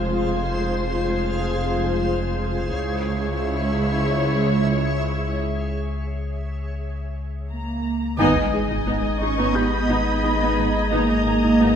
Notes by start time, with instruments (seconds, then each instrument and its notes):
Already playing: double bass section F1, sub bass F1, cello section F2, viola section G#3 F4, synth texture G#4 C5 F5, violin section C5
2.72 sub bass C#2, cello section C#2, double bass section C#2, viola section G#3 E4, synth texture G#4 C#5 E5, violin section C#5
7.51 cello section A#3, violin section A#5
8.18 sub bass G#1, double bass section G#1, cello section G#3, french horn section G#3 D#4, viola section B3 D#4, synth texture D#4 D#5, violin section D#5 G#5 D#6, sub drop
8.35 double bass section G#1, viola section D#4
8.52 double bass section G#1, viola section D#4 G#4
8.70 double bass section G#1, viola section D#4
8.86 double bass section G#1, viola section B3 D#4, violin section G#6
9.21 double bass section G#1, cello section C#4, viola section D#4 G#4, violin section C#6
9.38 double bass section G#1, viola section B3 D#4
9.55 double bass section G#1, cello section B3, viola section D#4, felt piano G4 G6, violin section B5
9.89 double bass section G#1, viola section B3 D#4
10.23 double bass section G#1, viola section D#4 G#4
10.40 double bass section G#1, viola section B3 D#4
10.57 double bass section G#1, viola section D#4
10.91 double bass section G#1, cello section A#3, viola section B3 D#4, violin section A#5
11.09 double bass section G#1, viola section D#4
11.25 double bass section G#1, viola section D#4 G#4
11.42 double bass section G#1, viola section D#4
11.60 double bass section G#1, viola section B3 D#4